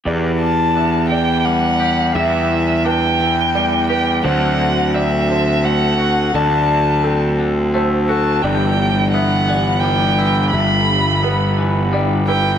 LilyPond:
<<
  \new Staff \with { instrumentName = "Violin" } { \time 3/4 \key e \minor \tempo 4 = 86 r8 a''4 g''8 fis''4 | e''4 g''4. g''8 | fis''4 e''4 fis''4 | a''4. r4 a''8 |
g''4 fis''4 g''4 | b''4. r4 g''8 | }
  \new Staff \with { instrumentName = "Felt piano" } { \time 3/4 \key e \minor d''4 e''8 d''4 r8 | e''4 b'4 d''8 b'8 | c''4 d''8 c''4 r8 | d''4 a'4 c''8 a'8 |
d''4 e''8 d''4 r8 | e''4 b'4 d''8 b'8 | }
  \new Staff \with { instrumentName = "Pedal steel guitar" } { \time 3/4 \key e \minor << { d''2. | e''2. | d''2.~ | d''2. |
d''2.~ | d''2. | } \\ { <e b g'>2.~ | <e b g'>2. | <fis c' a'>2.~ | <fis c' a'>2. |
<e b g'>2.~ | <e b g'>2. | } >> }
  \new Staff \with { instrumentName = "Clean electric guitar" } { \clef bass \time 3/4 \key e \minor e,4 d'8 e8 g8 g'8 | e,4 d'8 e8 g8 g'8 | d4 c'8 d8 a8 fis'8 | d4 c'8 d8 a8 fis'8 |
g,4 b8 e8 g8 e'8 | g,4 b8 e8 g8 e'8 | }
  \new Staff \with { instrumentName = "Picked electric bass" } { \clef bass \time 3/4 \key e \minor e,2. | e,2. | d,2. | d,2. |
g,,2. | g,,2. | }
>>